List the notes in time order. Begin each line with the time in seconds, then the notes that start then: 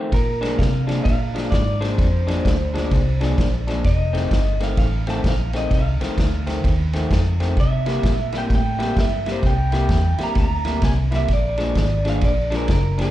Already playing: F2 D#3 A3 C4
0.12 A#2 A#4, kick, snare, ride
0.41 A#2 F3 G#3 D4, snare, ride
0.58 C3 F5, kick, snare, ride
0.87 A#2 F3 G#3 D4, snare, ride
1.04 A#2 F5, kick, snare, ride
1.34 A#2 F3 G#3 D4, snare, ride
1.51 G#2 D5, kick, snare, ride
1.81 A#2 F3 G#3 D4 C5, snare, ride
1.98 F2, kick, snare, ride
2.27 A#2 F3 G#3 D4, snare, ride
2.45 D2, kick, snare, ride
2.74 A#2 F3 G#3 D4, snare, ride
2.91 C2, kick, snare, ride
3.21 A#2 F3 G#3 D4, snare, ride
3.38 A#1, kick, snare, ride
3.67 A#2 F3 G#3 D4, snare, ride
3.84 F1 D#5, kick, snare, ride
4.13 F2 D#3 A3 C4, snare, ride
4.31 G1, kick, snare, ride
4.60 F2 D#3 A3 C4 F5, snare, ride
4.77 A1 F5, kick, snare, ride
5.07 F2 D#3 A3 C4 A5, snare, ride
5.24 A#1 F5, kick, snare, ride
5.53 F2 D#3 A3 C4 D#5, snare, ride
5.70 C2 F5, kick, snare, ride
6.01 F2 D#3 A3 C4, muted fingered electric bass stroke, snare, ride
6.18 D2, kick, snare, ride
6.47 F2 D#3 A3 C4, snare, ride
6.64 D#2, kick, snare, ride
6.93 F2 D#3 A3 C4, snare, ride
7.11 F2, kick, snare, ride
7.40 F2 D#3 A3 C4, snare, ride
7.57 C3 E5, kick, snare, ride
7.86 C3 G3 A#3 E4, snare, ride
8.03 A#2, kick, snare, ride
8.32 C3 G3 A#3 E4, snare, ride
8.38 G5
8.50 A2, kick, snare, ride
8.55 G5
8.79 C3 G3 A#3 E4, snare, ride
8.97 G2 E5, kick, snare, ride
9.26 C3 G3 A#3 E4, snare, ride
9.32 C5
9.42 C2, kick, snare, ride
9.46 G5
9.72 C3 G3 A#3 E4, snare, ride
9.89 E2, kick, snare, ride
10.18 C3 G3 A#3 E4, muted fingered electric bass stroke, snare, ride
10.23 A#5
10.35 D2 A#5, kick, snare, ride
10.65 C3 G3 A#3 E4, snare, ride
10.82 C2 G#5, kick, snare, ride
11.11 C3 G3 A#3 E4, snare, ride
11.16 E5
11.28 A#1, kick, snare, ride
11.33 D5
11.58 A#2 F3 G#3 D4, snare, ride
11.75 G#1, kick, snare, ride
12.05 A#2 F3 G#3 D4, snare, ride
12.09 F5
12.21 A#1 D5, kick, snare, ride
12.50 A#2 F3 G#3 D4, snare, ride
12.56 A#4
12.68 F#1, kick, snare, ride
12.72 A#4
12.98 A#2 F3 G#3 D4 A4, snare, ride